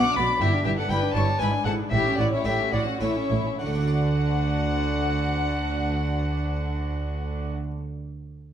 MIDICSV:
0, 0, Header, 1, 8, 480
1, 0, Start_track
1, 0, Key_signature, 2, "major"
1, 0, Tempo, 491400
1, 399, Time_signature, 3, 2, 24, 8
1, 1366, Tempo, 538117
1, 2806, Tempo, 607287
1, 7169, End_track
2, 0, Start_track
2, 0, Title_t, "Violin section"
2, 0, Program_c, 0, 48
2, 0, Note_on_c, 0, 90, 119
2, 153, Note_on_c, 0, 86, 120
2, 164, Note_off_c, 0, 90, 0
2, 394, Note_off_c, 0, 86, 0
2, 399, Note_on_c, 0, 79, 107
2, 477, Note_off_c, 0, 79, 0
2, 636, Note_on_c, 0, 79, 100
2, 684, Note_off_c, 0, 79, 0
2, 768, Note_on_c, 0, 81, 97
2, 878, Note_on_c, 0, 83, 109
2, 880, Note_off_c, 0, 81, 0
2, 956, Note_off_c, 0, 83, 0
2, 1131, Note_on_c, 0, 85, 110
2, 1209, Note_off_c, 0, 85, 0
2, 1385, Note_on_c, 0, 83, 116
2, 1456, Note_off_c, 0, 83, 0
2, 1608, Note_on_c, 0, 81, 101
2, 1679, Note_off_c, 0, 81, 0
2, 1838, Note_on_c, 0, 79, 109
2, 2064, Note_off_c, 0, 79, 0
2, 2079, Note_on_c, 0, 78, 94
2, 2124, Note_off_c, 0, 78, 0
2, 2201, Note_on_c, 0, 76, 91
2, 2312, Note_off_c, 0, 76, 0
2, 2314, Note_on_c, 0, 79, 115
2, 2386, Note_off_c, 0, 79, 0
2, 2557, Note_on_c, 0, 78, 105
2, 2804, Note_off_c, 0, 78, 0
2, 2811, Note_on_c, 0, 76, 90
2, 3273, Note_off_c, 0, 76, 0
2, 3280, Note_on_c, 0, 78, 100
2, 6365, Note_off_c, 0, 78, 0
2, 7169, End_track
3, 0, Start_track
3, 0, Title_t, "Violin"
3, 0, Program_c, 1, 40
3, 0, Note_on_c, 1, 86, 107
3, 160, Note_on_c, 1, 83, 102
3, 175, Note_off_c, 1, 86, 0
3, 403, Note_on_c, 1, 76, 96
3, 417, Note_off_c, 1, 83, 0
3, 639, Note_off_c, 1, 76, 0
3, 646, Note_on_c, 1, 76, 85
3, 692, Note_off_c, 1, 76, 0
3, 765, Note_on_c, 1, 78, 88
3, 876, Note_on_c, 1, 79, 105
3, 891, Note_off_c, 1, 78, 0
3, 1105, Note_off_c, 1, 79, 0
3, 1111, Note_on_c, 1, 81, 99
3, 1361, Note_on_c, 1, 80, 100
3, 1375, Note_off_c, 1, 81, 0
3, 1586, Note_off_c, 1, 80, 0
3, 1592, Note_on_c, 1, 78, 92
3, 1663, Note_off_c, 1, 78, 0
3, 1820, Note_on_c, 1, 76, 90
3, 2055, Note_off_c, 1, 76, 0
3, 2063, Note_on_c, 1, 74, 92
3, 2181, Note_off_c, 1, 74, 0
3, 2194, Note_on_c, 1, 73, 82
3, 2308, Note_on_c, 1, 76, 89
3, 2321, Note_off_c, 1, 73, 0
3, 2547, Note_off_c, 1, 76, 0
3, 2552, Note_on_c, 1, 74, 83
3, 2624, Note_off_c, 1, 74, 0
3, 2802, Note_on_c, 1, 73, 85
3, 3268, Note_off_c, 1, 73, 0
3, 3279, Note_on_c, 1, 78, 84
3, 6364, Note_off_c, 1, 78, 0
3, 7169, End_track
4, 0, Start_track
4, 0, Title_t, "Violin section"
4, 0, Program_c, 2, 48
4, 0, Note_on_c, 2, 78, 107
4, 153, Note_on_c, 2, 74, 93
4, 157, Note_off_c, 2, 78, 0
4, 389, Note_off_c, 2, 74, 0
4, 403, Note_on_c, 2, 67, 97
4, 624, Note_off_c, 2, 67, 0
4, 636, Note_on_c, 2, 67, 88
4, 754, Note_off_c, 2, 67, 0
4, 754, Note_on_c, 2, 69, 81
4, 861, Note_on_c, 2, 71, 97
4, 873, Note_off_c, 2, 69, 0
4, 1107, Note_off_c, 2, 71, 0
4, 1116, Note_on_c, 2, 73, 90
4, 1357, Note_on_c, 2, 71, 93
4, 1365, Note_off_c, 2, 73, 0
4, 1429, Note_off_c, 2, 71, 0
4, 1592, Note_on_c, 2, 69, 87
4, 1663, Note_off_c, 2, 69, 0
4, 1827, Note_on_c, 2, 67, 95
4, 2059, Note_off_c, 2, 67, 0
4, 2066, Note_on_c, 2, 66, 89
4, 2185, Note_off_c, 2, 66, 0
4, 2186, Note_on_c, 2, 64, 82
4, 2303, Note_on_c, 2, 67, 93
4, 2304, Note_off_c, 2, 64, 0
4, 2547, Note_on_c, 2, 66, 85
4, 2552, Note_off_c, 2, 67, 0
4, 2799, Note_off_c, 2, 66, 0
4, 2806, Note_on_c, 2, 64, 84
4, 3272, Note_on_c, 2, 66, 76
4, 3279, Note_off_c, 2, 64, 0
4, 6357, Note_off_c, 2, 66, 0
4, 7169, End_track
5, 0, Start_track
5, 0, Title_t, "Viola section"
5, 0, Program_c, 3, 48
5, 46, Note_on_c, 3, 62, 68
5, 163, Note_off_c, 3, 62, 0
5, 166, Note_on_c, 3, 59, 72
5, 282, Note_off_c, 3, 59, 0
5, 289, Note_on_c, 3, 62, 63
5, 394, Note_on_c, 3, 64, 80
5, 403, Note_off_c, 3, 62, 0
5, 506, Note_off_c, 3, 64, 0
5, 523, Note_on_c, 3, 62, 64
5, 637, Note_on_c, 3, 64, 66
5, 639, Note_off_c, 3, 62, 0
5, 756, Note_off_c, 3, 64, 0
5, 763, Note_on_c, 3, 62, 72
5, 879, Note_on_c, 3, 64, 73
5, 880, Note_off_c, 3, 62, 0
5, 990, Note_off_c, 3, 64, 0
5, 1004, Note_on_c, 3, 62, 63
5, 1123, Note_off_c, 3, 62, 0
5, 1133, Note_on_c, 3, 64, 72
5, 1249, Note_off_c, 3, 64, 0
5, 1254, Note_on_c, 3, 62, 65
5, 1372, Note_off_c, 3, 62, 0
5, 1379, Note_on_c, 3, 64, 70
5, 1480, Note_off_c, 3, 64, 0
5, 1491, Note_on_c, 3, 62, 64
5, 1600, Note_off_c, 3, 62, 0
5, 1602, Note_on_c, 3, 64, 63
5, 1714, Note_off_c, 3, 64, 0
5, 1722, Note_on_c, 3, 62, 65
5, 1833, Note_off_c, 3, 62, 0
5, 1847, Note_on_c, 3, 64, 76
5, 1947, Note_off_c, 3, 64, 0
5, 1955, Note_on_c, 3, 61, 69
5, 2069, Note_off_c, 3, 61, 0
5, 2077, Note_on_c, 3, 64, 69
5, 2190, Note_off_c, 3, 64, 0
5, 2199, Note_on_c, 3, 61, 64
5, 2313, Note_off_c, 3, 61, 0
5, 2320, Note_on_c, 3, 64, 67
5, 2428, Note_off_c, 3, 64, 0
5, 2452, Note_on_c, 3, 61, 62
5, 2561, Note_on_c, 3, 64, 68
5, 2565, Note_off_c, 3, 61, 0
5, 2683, Note_off_c, 3, 64, 0
5, 2686, Note_on_c, 3, 61, 59
5, 2799, Note_on_c, 3, 64, 70
5, 2810, Note_off_c, 3, 61, 0
5, 2910, Note_off_c, 3, 64, 0
5, 2925, Note_on_c, 3, 61, 63
5, 3042, Note_off_c, 3, 61, 0
5, 3046, Note_on_c, 3, 64, 66
5, 3159, Note_on_c, 3, 61, 59
5, 3163, Note_off_c, 3, 64, 0
5, 3280, Note_off_c, 3, 61, 0
5, 3284, Note_on_c, 3, 62, 74
5, 6369, Note_off_c, 3, 62, 0
5, 7169, End_track
6, 0, Start_track
6, 0, Title_t, "Harpsichord"
6, 0, Program_c, 4, 6
6, 0, Note_on_c, 4, 47, 76
6, 0, Note_on_c, 4, 59, 60
6, 0, Note_on_c, 4, 62, 57
6, 0, Note_on_c, 4, 66, 62
6, 142, Note_off_c, 4, 47, 0
6, 168, Note_on_c, 4, 47, 64
6, 272, Note_off_c, 4, 59, 0
6, 275, Note_off_c, 4, 62, 0
6, 276, Note_off_c, 4, 66, 0
6, 378, Note_off_c, 4, 47, 0
6, 406, Note_on_c, 4, 43, 68
6, 617, Note_off_c, 4, 43, 0
6, 640, Note_on_c, 4, 43, 73
6, 854, Note_off_c, 4, 43, 0
6, 876, Note_on_c, 4, 43, 72
6, 881, Note_on_c, 4, 59, 59
6, 884, Note_on_c, 4, 62, 58
6, 885, Note_on_c, 4, 64, 63
6, 1095, Note_off_c, 4, 43, 0
6, 1120, Note_on_c, 4, 43, 71
6, 1233, Note_off_c, 4, 59, 0
6, 1234, Note_off_c, 4, 62, 0
6, 1235, Note_off_c, 4, 64, 0
6, 1342, Note_off_c, 4, 43, 0
6, 1355, Note_on_c, 4, 44, 70
6, 1360, Note_on_c, 4, 59, 58
6, 1365, Note_on_c, 4, 62, 61
6, 1370, Note_on_c, 4, 64, 60
6, 1566, Note_off_c, 4, 44, 0
6, 1587, Note_on_c, 4, 44, 72
6, 1788, Note_off_c, 4, 59, 0
6, 1790, Note_off_c, 4, 62, 0
6, 1793, Note_off_c, 4, 64, 0
6, 1799, Note_off_c, 4, 44, 0
6, 1825, Note_on_c, 4, 45, 64
6, 2039, Note_off_c, 4, 45, 0
6, 2058, Note_on_c, 4, 45, 71
6, 2278, Note_off_c, 4, 45, 0
6, 2297, Note_on_c, 4, 57, 60
6, 2301, Note_on_c, 4, 45, 69
6, 2305, Note_on_c, 4, 61, 58
6, 2306, Note_on_c, 4, 64, 66
6, 2526, Note_off_c, 4, 45, 0
6, 2544, Note_on_c, 4, 45, 63
6, 2662, Note_off_c, 4, 57, 0
6, 2667, Note_off_c, 4, 61, 0
6, 2667, Note_off_c, 4, 64, 0
6, 2777, Note_off_c, 4, 45, 0
6, 2800, Note_on_c, 4, 45, 69
6, 2801, Note_on_c, 4, 57, 57
6, 2803, Note_on_c, 4, 61, 57
6, 2808, Note_on_c, 4, 64, 60
6, 3014, Note_off_c, 4, 45, 0
6, 3034, Note_on_c, 4, 45, 61
6, 3144, Note_off_c, 4, 57, 0
6, 3145, Note_off_c, 4, 61, 0
6, 3148, Note_off_c, 4, 64, 0
6, 3253, Note_off_c, 4, 45, 0
6, 3266, Note_on_c, 4, 50, 58
6, 3320, Note_on_c, 4, 57, 64
6, 3375, Note_on_c, 4, 62, 56
6, 3432, Note_on_c, 4, 66, 57
6, 3487, Note_on_c, 4, 74, 58
6, 6351, Note_off_c, 4, 50, 0
6, 6405, Note_off_c, 4, 57, 0
6, 6459, Note_off_c, 4, 62, 0
6, 6517, Note_off_c, 4, 66, 0
6, 6572, Note_off_c, 4, 74, 0
6, 7169, End_track
7, 0, Start_track
7, 0, Title_t, "Cello section"
7, 0, Program_c, 5, 48
7, 172, Note_on_c, 5, 47, 81
7, 250, Note_off_c, 5, 47, 0
7, 399, Note_on_c, 5, 43, 90
7, 478, Note_off_c, 5, 43, 0
7, 637, Note_on_c, 5, 43, 76
7, 715, Note_off_c, 5, 43, 0
7, 876, Note_on_c, 5, 43, 79
7, 954, Note_off_c, 5, 43, 0
7, 1128, Note_on_c, 5, 43, 80
7, 1206, Note_off_c, 5, 43, 0
7, 1373, Note_on_c, 5, 44, 82
7, 1445, Note_off_c, 5, 44, 0
7, 1594, Note_on_c, 5, 44, 84
7, 1665, Note_off_c, 5, 44, 0
7, 1834, Note_on_c, 5, 45, 86
7, 1906, Note_off_c, 5, 45, 0
7, 2067, Note_on_c, 5, 45, 78
7, 2139, Note_off_c, 5, 45, 0
7, 2309, Note_on_c, 5, 45, 76
7, 2380, Note_off_c, 5, 45, 0
7, 2557, Note_on_c, 5, 45, 76
7, 2628, Note_off_c, 5, 45, 0
7, 2814, Note_on_c, 5, 45, 78
7, 2877, Note_off_c, 5, 45, 0
7, 3044, Note_on_c, 5, 45, 76
7, 3107, Note_off_c, 5, 45, 0
7, 3285, Note_on_c, 5, 50, 77
7, 6370, Note_off_c, 5, 50, 0
7, 7169, End_track
8, 0, Start_track
8, 0, Title_t, "Double bass section"
8, 0, Program_c, 6, 48
8, 159, Note_on_c, 6, 35, 84
8, 237, Note_off_c, 6, 35, 0
8, 393, Note_on_c, 6, 31, 88
8, 472, Note_off_c, 6, 31, 0
8, 634, Note_on_c, 6, 31, 76
8, 712, Note_off_c, 6, 31, 0
8, 876, Note_on_c, 6, 31, 82
8, 955, Note_off_c, 6, 31, 0
8, 1117, Note_on_c, 6, 31, 78
8, 1195, Note_off_c, 6, 31, 0
8, 1363, Note_on_c, 6, 32, 76
8, 1435, Note_off_c, 6, 32, 0
8, 1595, Note_on_c, 6, 32, 83
8, 1666, Note_off_c, 6, 32, 0
8, 1831, Note_on_c, 6, 33, 83
8, 1903, Note_off_c, 6, 33, 0
8, 2066, Note_on_c, 6, 33, 80
8, 2137, Note_off_c, 6, 33, 0
8, 2306, Note_on_c, 6, 33, 78
8, 2377, Note_off_c, 6, 33, 0
8, 2550, Note_on_c, 6, 33, 76
8, 2622, Note_off_c, 6, 33, 0
8, 2803, Note_on_c, 6, 33, 73
8, 2866, Note_off_c, 6, 33, 0
8, 3036, Note_on_c, 6, 33, 81
8, 3099, Note_off_c, 6, 33, 0
8, 3274, Note_on_c, 6, 38, 80
8, 6359, Note_off_c, 6, 38, 0
8, 7169, End_track
0, 0, End_of_file